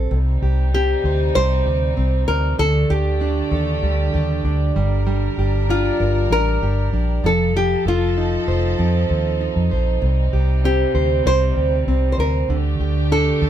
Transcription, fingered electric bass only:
0.11 C2
0.42 C2
1.04 D2
1.35 C2
1.66 D2
1.97 C2
2.28 D2
2.59 D2
2.90 D2
3.51 D#2
3.83 D2
4.14 D#2
4.45 D2
4.76 G1
5.38 G1
6.00 G1
6.30 A1
6.62 G1
6.92 A#1
7.23 F1
7.86 F1
8.48 F1
8.79 F2
9.10 D#2
9.56 F2
9.71 A#1
10.02 C2
10.33 C2
10.94 D2
11.25 C2
11.56 D2
11.87 C2
12.18 D2
12.49 D2
12.79 D2
13.41 D#2

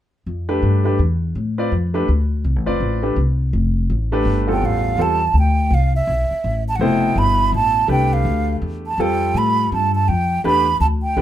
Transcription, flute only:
4.52 G5
4.65 F5
5.02 A5
5.39 G5
5.74 F5
5.96 E5
6.69 A5
6.76 F#5
6.83 G5
7.18 B5
7.55 A5
7.91 G5
8.13 F5
8.87 A5
9.01 G5
9.38 B5
9.74 A5
9.95 A5
10.08 G5
10.46 B5
10.81 A5
11.03 G5

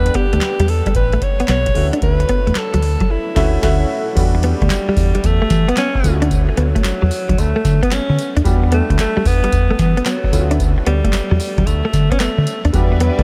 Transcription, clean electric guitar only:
0.06 muted clean electric guitar stroke
0.15 B3
0.33 A3
0.60 G3
0.69 muted clean electric guitar stroke
0.87 G3
1.13 A3
1.22 muted clean electric guitar stroke
1.40 B3
1.49 B3
1.67 muted clean electric guitar stroke
1.93 D4
2.20 muted clean electric guitar stroke
2.29 B3
2.47 A3
2.74 F#3
2.83 muted clean electric guitar stroke
3.01 F#3
4.35 muted clean electric guitar stroke
4.44 B3
4.62 A3
4.89 G3
4.98 muted clean electric guitar stroke
5.15 G3
5.42 A3
5.51 muted clean electric guitar stroke
5.68 B3
5.78 B3
5.95 muted clean electric guitar stroke
6.22 D4
6.49 muted clean electric guitar stroke
6.58 B3
6.75 A3
7.02 F#3
7.11 muted clean electric guitar stroke
7.29 F#3
7.56 A3
7.65 muted clean electric guitar stroke
7.83 B3
7.92 B3
8.10 muted clean electric guitar stroke
8.37 D4
8.64 muted clean electric guitar stroke
8.72 B3
8.90 A3
9.17 G3
9.26 muted clean electric guitar stroke
9.44 G3
9.71 A3
9.80 muted clean electric guitar stroke
9.97 B3
10.06 B3
10.25 muted clean electric guitar stroke
10.51 D4
10.78 muted clean electric guitar stroke
10.87 B3
11.04 A3
11.31 F#3
11.40 muted clean electric guitar stroke
11.58 F#3
11.85 A3
11.94 muted clean electric guitar stroke
12.12 B3
12.20 B3
12.39 muted clean electric guitar stroke
12.65 D4
12.92 muted clean electric guitar stroke
13.01 B3
13.19 A3

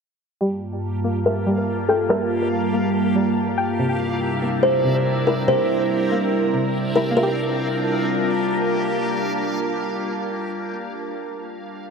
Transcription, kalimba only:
1.26 A#4
1.89 A4
2.10 A#4
4.63 C5
5.27 A#4
5.48 C5
6.96 A#4
7.17 A#4

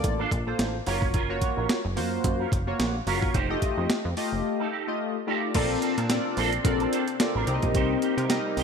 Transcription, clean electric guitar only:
0.04 muted clean electric guitar stroke
0.19 D4 F4 A4
0.31 muted clean electric guitar stroke
0.47 muted clean electric guitar stroke
0.74 muted clean electric guitar stroke
0.86 C#4 F4 A#4
1.02 muted clean electric guitar stroke
1.14 C#4 F4 A#4
1.29 muted clean electric guitar stroke
1.42 muted clean electric guitar stroke
1.57 C#4 F4 A#4
1.69 muted clean electric guitar stroke
1.84 muted clean electric guitar stroke
2.12 muted clean electric guitar stroke
2.24 muted clean electric guitar stroke
2.39 C#4 F4 A#4
2.52 muted clean electric guitar stroke
2.67 muted clean electric guitar stroke
2.79 muted clean electric guitar stroke
2.94 muted clean electric guitar stroke
3.06 C#4 F4 A#4
3.22 C#4 F4 A#4
3.34 D#4 G4 C5
3.50 muted clean electric guitar stroke
3.62 muted clean electric guitar stroke
3.77 D#4 G4 C5
3.89 muted clean electric guitar stroke
4.04 muted clean electric guitar stroke
4.32 muted clean electric guitar stroke
4.44 muted clean electric guitar stroke
4.59 D#4 G4 A4
4.72 D#4 G4 A4
4.88 muted clean electric guitar stroke
5.15 muted clean electric guitar stroke
5.27 D#4 G4 A4
5.42 muted clean electric guitar stroke
5.54 C4 D4 A4
5.82 C4 D4 A4
5.97 C4 D4 A4
6.25 muted clean electric guitar stroke
6.37 C4 D4 A4
6.53 muted clean electric guitar stroke
6.65 muted clean electric guitar stroke
6.80 C4 D4 A4
6.92 C4 D4 A4
7.08 muted clean electric guitar stroke
7.20 muted clean electric guitar stroke
7.35 C4 D4 A#4
7.47 muted clean electric guitar stroke
7.62 muted clean electric guitar stroke
7.74 D#4 G4 C5
8.02 D#4 G4 C5
8.18 D#4 G4 A#4
8.45 muted clean electric guitar stroke
8.57 D#4 G4 C5

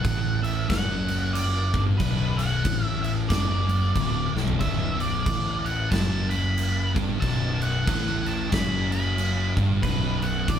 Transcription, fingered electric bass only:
0.04 A1
0.70 F#1
1.74 G1
2.00 B0
2.65 A1
3.30 F#1
3.96 D1
4.33 B0
4.61 B0
5.26 A1
5.92 F#1
6.96 G1
7.22 B0
7.87 A1
8.52 F#1
9.56 G1
9.83 B0
10.48 A1

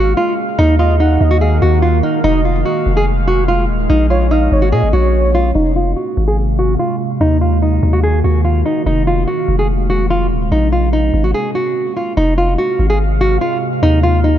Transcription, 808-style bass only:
Already playing: G#1
0.59 D#2
1.21 D#2
1.62 D#2
2.24 F1
2.86 F1
3.69 D#1
3.90 A#1
4.52 G#1
4.72 A#2
4.83 G#1
4.93 A#1
5.55 F1
6.17 G#1
7.21 D#2
7.83 D#2
8.24 D#2
8.86 F1
9.48 F1
10.31 D#1
10.52 A#1
11.14 G#1
12.17 F1
12.79 G#1
13.83 D#2

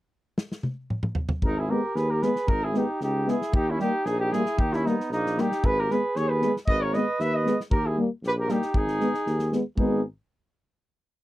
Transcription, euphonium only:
1.70 G#3
2.22 G#3
2.74 G#3
3.26 G#3
3.79 G3
4.33 G3
4.86 G3
5.39 G3
5.91 G#3
6.43 G#3
6.96 G#3
7.47 G#3
7.97 G3
8.49 G3
9.00 G#3
9.52 G#3
9.78 G#3

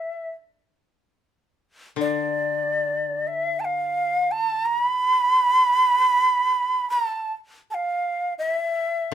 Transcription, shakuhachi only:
Already playing: E5
2.01 D5
3.27 E5
3.60 A5
3.65 F5
4.31 A5
4.66 A#5
4.83 B5
6.90 A#5
7.07 A5
7.71 F5 A5
8.39 E5

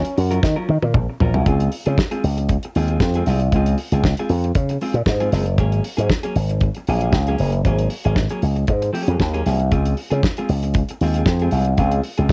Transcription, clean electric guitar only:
0.05 muted clean electric guitar stroke
0.17 muted clean electric guitar stroke
0.31 F#3 C#4 F4 A#4
0.44 muted clean electric guitar stroke
0.56 F#3 C#4 F4 A#4
0.69 muted clean electric guitar stroke
0.83 muted clean electric guitar stroke
0.96 muted clean electric guitar stroke
1.10 muted clean electric guitar stroke
1.21 F#3 C#4 F4 A#4
1.35 F#3 C#4 F4 A#4
1.47 G#3 C4 F4 G#4
1.72 muted clean electric guitar stroke
1.86 G#3 C4 F4 G#4
2.11 G#3 C4 F4 G#4
2.24 muted clean electric guitar stroke
2.37 muted clean electric guitar stroke
2.50 muted clean electric guitar stroke
2.65 muted clean electric guitar stroke
2.76 G#3 C4 F4 G#4
2.90 G#3 C4 F4 G#4
3.03 muted clean electric guitar stroke
3.16 G#3 C4 F4 G#4
3.28 G#3 C4 F4 G#4
3.42 muted clean electric guitar stroke
3.55 G#3 C4 F4 G#4
3.79 muted clean electric guitar stroke
3.93 G#3 C4 F4 G#4
4.19 G#3 C4 F4 G#4
4.31 muted clean electric guitar stroke
4.45 muted clean electric guitar stroke
4.56 muted clean electric guitar stroke
4.70 muted clean electric guitar stroke
4.82 G#3 C4 F4 G#4
4.95 muted clean electric guitar stroke
5.07 muted clean electric guitar stroke
5.20 G#3 C4 F4 G#4
5.33 G#3 C4 F4 G#4
5.46 muted clean electric guitar stroke
5.59 F#3 A#3 C#4 G#4
5.84 muted clean electric guitar stroke
5.97 F#3 A#3 C#4 G#4
6.23 F#3 A#3 C#4 G#4
6.36 muted clean electric guitar stroke
6.51 muted clean electric guitar stroke
6.63 muted clean electric guitar stroke
6.77 muted clean electric guitar stroke
6.88 F#3 A#3 C#4 G#4
7.03 F#3 A#3 C#4 G#4
7.15 muted clean electric guitar stroke
7.28 F#3 A#3 C#4 G#4
7.41 F#3 A#3 C#4 G#4
7.54 muted clean electric guitar stroke
7.66 F#3 A#3 C#4 G#4
7.91 muted clean electric guitar stroke
8.05 F#3 A#3 C#4 G#4
8.17 muted clean electric guitar stroke
8.31 F#3 A#3 C#4 G#4
8.43 muted clean electric guitar stroke
8.56 muted clean electric guitar stroke
8.69 muted clean electric guitar stroke
8.82 muted clean electric guitar stroke
8.93 F#3 A#3 C#4 G#4
9.08 F#3 A#3 C#4 G#4
9.19 muted clean electric guitar stroke
9.34 F#3 A#3 C#4 G#4
9.45 F#3 A#3 C#4 G#4
9.60 muted clean electric guitar stroke
9.72 G#3 C4 F4 G#4
9.97 muted clean electric guitar stroke
10.10 G#3 C4 F4 G#4
10.38 G#3 C4 F4 G#4
10.63 muted clean electric guitar stroke
10.76 muted clean electric guitar stroke
10.90 muted clean electric guitar stroke
11.03 G#3 C4 F4 G#4
11.17 G#3 C4 F4 G#4
11.42 G#3 C4 F4 G#4
11.53 G#3 C4 F4 G#4
11.67 muted clean electric guitar stroke
11.78 G#3 C4 F4 G#4
12.05 muted clean electric guitar stroke
12.18 G#3 C4 F4 G#4

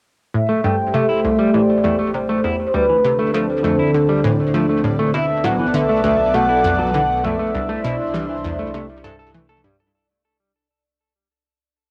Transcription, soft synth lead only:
0.34 E5
0.64 G5
0.95 E5
1.55 D5
2.14 C5
2.67 C5
2.74 B4
3.34 A4
5.15 E5
5.44 F#5
5.75 E5
6.04 E5
6.34 F#5
6.94 F#5
7.24 E5

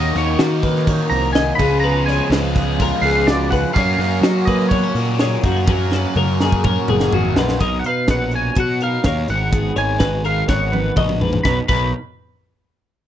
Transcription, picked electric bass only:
Already playing: D#2
0.15 D#2
0.39 D#3
1.11 C2
1.58 C#2
2.30 C#2
3.02 C#2
3.76 F#2
3.98 F#2
4.21 F#3
4.95 A#2
5.43 F#2
6.16 F#2
6.89 F#1
7.11 G#1
7.36 A#1
7.61 B1
8.08 A#1
8.56 B2
9.05 D#2
9.29 G#1
9.76 G#1
10.00 G#1
10.48 G#1
10.96 A#1
11.45 B1
11.69 B1

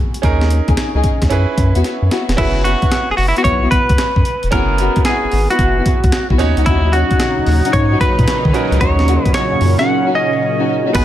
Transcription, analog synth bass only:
0.23 D#2
0.68 D#2
0.95 C#2
1.22 D#2
1.31 F#2
1.58 F#2
1.76 E2
2.02 F#2
2.29 E1
2.38 F#1
3.10 F#1
3.18 F#1
3.45 B1
3.90 C#2
4.16 F#2
4.44 E1
4.52 F#1
5.24 G#1
5.33 G#1
5.59 F#1
6.04 C#2
6.30 B1
6.40 D#2
6.57 C#2
6.67 D#2
7.38 D#2
7.47 D#2
7.73 G#2
8.19 A#2
8.45 D#3
8.72 C#2
8.81 D#2
9.53 F#2
9.61 F#2
10.95 G#1

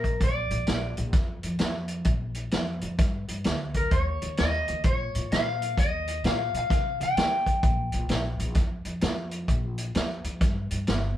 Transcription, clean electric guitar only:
Already playing: A#4
0.24 D5
3.77 A#4
3.92 C#5
4.39 D#5
4.86 C#5
5.32 F5
5.79 D#5
6.26 F5
6.57 F5
7.03 G5

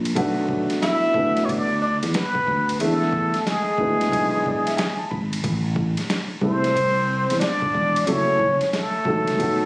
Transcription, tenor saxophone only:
0.82 E4
1.44 C#4
1.48 D4
1.82 D4
2.15 B3
2.80 A3
3.46 G#3
6.42 C4
7.39 D4
8.05 C#4
8.72 A3

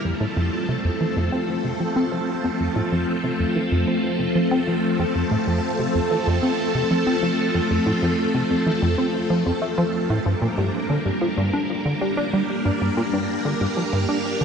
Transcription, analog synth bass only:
0.04 F2
0.20 A2
0.36 F2
0.68 C3
0.84 F2
1.00 E3
1.16 F2
1.32 C4
1.64 C3
1.80 F3
1.96 C4
2.12 F3
2.44 F2
2.60 F2
2.76 A2
2.92 F2
3.24 C3
3.40 F2
3.56 E3
3.72 F2
3.88 C4
4.19 C3
4.35 F3
4.51 C4
4.67 F3
4.99 F2
5.15 F2
5.31 A2
5.47 F2
5.79 C3
5.95 F2
6.11 E3
6.27 F2
6.43 C4
6.75 C3
6.91 F3
7.07 C4
7.23 F3
7.54 F2
7.70 F2
7.86 A2
8.02 F2
8.34 C3
8.50 F2
8.66 E3
8.82 F2
8.98 C4
9.30 F3
9.46 F2
9.62 A3
9.78 F3
10.10 A2
10.26 G2
10.42 A#2
10.58 G2
10.90 D3
11.05 G2
11.21 F3
11.37 G2
11.53 D4
11.85 D3
12.01 G3
12.17 D4
12.33 G3
12.65 G2
12.81 G2
12.97 A#2
13.13 G2
13.45 D3
13.61 G2
13.77 F3
13.93 G2
14.09 D4
14.41 D3

